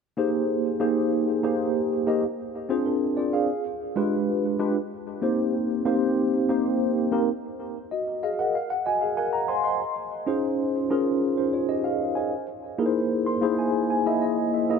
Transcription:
0.17 0.73 A#3 medium
0.17 0.73 D#4 medium
0.17 0.73 G4 medium
0.17 0.73 G#4 medium
0.17 0.73 C5 medium
0.80 1.36 A#3 medium
0.80 1.36 D#4 medium
0.80 1.36 G4 medium
0.80 1.36 G#4 medium
0.80 1.36 C5 medium
1.43 1.99 A#3 medium
1.43 1.99 D#4 medium
1.43 1.99 G4 medium
1.43 1.99 G#4 medium
1.43 2.00 C5 medium
2.07 2.23 A#3 medium
2.07 2.23 D#4 medium
2.07 2.23 G4 medium
2.07 2.23 G#4 medium
2.07 2.23 D#5 medium
2.69 3.25 C4 medium
2.69 2.86 D4 medium
2.69 2.86 F4 medium
2.69 2.86 G#4 medium
2.69 2.86 C5 loud
2.86 3.16 D4 medium
2.86 3.16 A#4 medium
3.17 3.32 F4 medium
3.17 3.32 D5 medium
3.33 3.64 G#4 medium
3.33 3.63 F5 medium
3.96 4.51 G#3 medium
3.96 4.52 D4 medium
3.96 4.52 F4 medium
3.96 4.52 G4 medium
3.96 4.52 B4 medium
4.59 4.75 G#3 medium
4.59 4.75 D4 medium
4.59 4.75 F4 medium
4.59 4.75 G4 medium
4.59 4.75 B4 loud
5.21 5.77 A#3 medium
5.21 5.78 C4 medium
5.21 5.78 D#4 medium
5.21 5.78 G4 medium
5.21 5.78 C5 medium
5.85 6.41 A#3 medium
5.85 6.41 C4 medium
5.85 6.41 D#4 medium
5.85 6.41 G4 medium
5.85 6.41 C5 loud
6.49 7.04 A#3 medium
6.49 7.04 C4 medium
6.49 7.04 D#4 medium
6.49 7.05 G4 medium
6.49 7.05 C5 medium
7.11 7.27 A#3 medium
7.11 7.27 C4 medium
7.11 7.28 D#4 medium
7.11 7.28 G4 medium
7.11 7.28 A#4 loud
7.91 8.21 F#4 medium
7.91 8.21 D#5 medium
8.23 8.38 G#4 medium
8.23 8.52 D#5 medium
8.23 8.38 F5 medium
8.39 8.69 A#4 medium
8.39 8.68 F#5 medium
8.55 8.69 F5 medium
8.70 8.85 F#5 medium
8.86 9.01 F#4 soft
8.86 9.01 D#5 medium
8.86 9.15 G#5 medium
9.01 9.17 G#4 soft
9.01 9.16 F5 medium
9.17 9.47 A#4 medium
9.17 9.47 F#5 medium
9.17 9.32 G#5 medium
9.33 9.47 A#5 medium
9.48 9.64 C5 medium
9.48 9.63 G#5 medium
9.48 9.63 C6 medium
9.64 9.94 D#5 soft
9.64 9.94 C6 medium
10.26 10.82 C#4 medium
10.26 10.82 D#4 medium
10.26 10.83 F4 medium
10.26 10.83 G#4 medium
10.26 10.83 C5 medium
10.90 11.46 C#4 medium
10.90 11.37 D#4 medium
10.90 11.38 F4 medium
10.90 11.38 G#4 medium
10.90 11.38 A#4 loud
11.37 11.53 D#4 soft
11.37 11.52 C5 medium
11.53 11.69 F4 medium
11.53 11.68 C#5 medium
11.69 11.84 G4 medium
11.69 11.84 D#5 medium
11.84 12.15 G#4 medium
11.84 12.14 F5 medium
12.15 12.46 C5 soft
12.15 12.46 G#5 medium
12.78 13.34 A#3 medium
12.78 13.35 D#4 medium
12.78 13.35 E4 medium
12.78 13.35 G#4 medium
12.78 12.86 A#4 medium
12.86 13.38 C5 medium
13.26 13.56 C6 medium
13.41 13.97 A#3 medium
13.41 13.98 D#4 medium
13.41 13.98 E4 medium
13.41 13.98 G#4 medium
13.41 13.98 C5 loud
13.59 13.88 G#5 medium
13.90 14.05 G#5 medium
14.06 14.61 A#3 medium
14.06 14.61 D#4 medium
14.06 14.61 E4 medium
14.06 14.62 G#4 medium
14.06 14.21 D#5 medium
14.06 14.21 E5 medium
14.22 14.51 D#5 medium
14.54 14.79 E5 medium
14.69 14.79 A#3 medium
14.69 14.79 D#4 medium
14.69 14.79 E4 medium
14.69 14.79 G#4 medium
14.69 14.79 D#5 medium

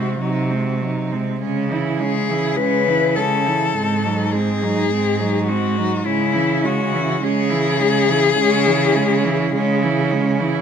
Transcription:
0.00 0.19 G#3 soft
0.00 0.20 C4 soft
0.00 0.80 F#4 medium
0.19 1.26 C3 soft
0.19 0.51 F#3 soft
0.19 0.53 D#4 soft
0.50 0.82 G#3 soft
0.50 0.84 C4 soft
0.80 1.12 F#3 soft
0.80 1.13 D#4 soft
1.11 1.40 G#3 soft
1.11 1.41 C4 soft
1.41 2.44 C#3 soft
1.41 1.72 G#3 soft
1.41 1.73 C#4 soft
1.70 2.01 E3 soft
1.70 2.03 E4 soft
1.99 2.30 G#3 soft
1.99 2.32 C#4 soft
1.99 2.58 G#4 medium
2.29 2.57 E3 soft
2.29 2.59 E4 soft
2.57 3.61 C#3 soft
2.57 2.88 G#3 soft
2.57 2.89 C#4 soft
2.57 3.17 B4 medium
2.87 3.18 E3 soft
2.87 3.18 E4 soft
3.16 3.48 G#3 soft
3.16 3.47 C#4 soft
3.16 4.33 A4 medium
3.46 3.75 E3 soft
3.46 3.75 E4 soft
3.75 4.77 G#2 soft
3.75 4.06 G#3 soft
3.75 4.06 C4 soft
4.05 4.35 F#3 soft
4.05 4.36 D#4 soft
4.31 4.63 G#3 soft
4.31 4.64 C4 soft
4.31 5.46 G#4 medium
4.62 4.90 F#3 soft
4.62 4.91 D#4 soft
4.91 5.92 G#2 medium
4.91 5.22 G#3 soft
4.91 5.21 C4 soft
5.20 5.50 F#3 soft
5.20 5.50 D#4 soft
5.47 5.78 G#3 soft
5.47 5.78 C4 soft
5.47 6.07 F#4 medium
5.76 6.06 F#3 soft
5.76 6.04 D#4 soft
6.05 7.08 C#3 medium
6.05 6.36 G#3 soft
6.05 6.35 C#4 medium
6.05 6.66 E4 medium
6.33 6.65 E3 soft
6.33 6.64 E4 soft
6.63 6.94 G#3 soft
6.63 6.94 C#4 soft
6.63 7.24 F#4 medium
6.92 7.21 E3 soft
6.92 7.21 E4 soft
7.21 8.24 C#3 medium
7.21 7.52 G#3 soft
7.21 7.51 C#4 soft
7.21 10.12 G#4 medium
7.50 7.80 E3 soft
7.50 7.82 E4 soft
7.79 8.10 G#3 soft
7.79 8.10 C#4 soft
8.08 8.37 E3 soft
8.08 8.38 E4 soft
8.37 9.41 C#3 medium
8.37 8.67 G#3 medium
8.37 8.68 C#4 medium
8.66 8.97 E3 soft
8.66 8.96 E4 soft
8.95 9.26 G#3 soft
8.95 9.26 C#4 medium
9.24 9.53 E3 medium
9.24 9.53 E4 soft
9.53 10.54 C#3 medium
9.53 9.84 G#3 medium
9.53 9.84 C#4 medium
9.83 10.13 E3 soft
9.83 10.12 E4 medium
10.10 10.41 G#3 medium
10.10 10.41 C#4 medium
10.40 10.62 E3 soft
10.40 10.62 E4 medium

